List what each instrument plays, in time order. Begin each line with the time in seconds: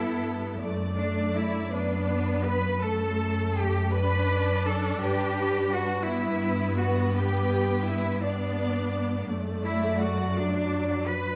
Already playing: double bass section G2, viola section B3, cello section E4, violin section A4 E5
0.60 double bass section F#2, viola section A3, violin section D5
0.97 cello section D4, violin section D5
1.35 cello section E4, violin section E5
1.71 viola section B3, cello section D4, violin section B4 D5
2.44 cello section B4, violin section B5
2.81 viola section A3, cello section A4, violin section A4 A5
3.55 cello section G4, violin section G5
3.92 viola section D4, cello section B4, violin section D5 B5
4.64 cello section A4, violin section A5
5.00 double bass section G2, cello section G4, violin section B4 G5
5.72 cello section F#4, violin section F#5
6.07 viola section B3, cello section E4, violin section B4 E5
6.77 cello section F#4, violin section F#5
7.13 cello section G4, violin section G5
7.86 cello section E4, violin section E5
8.22 viola section B3, cello section D4, violin section D5
9.28 double bass section F#2, viola section A3, violin section D5
9.62 cello section E4, violin section E5
9.98 cello section F#4, violin section F#5
10.35 viola section F#3, cello section D4, violin section D5
11.06 cello section B4, violin section B5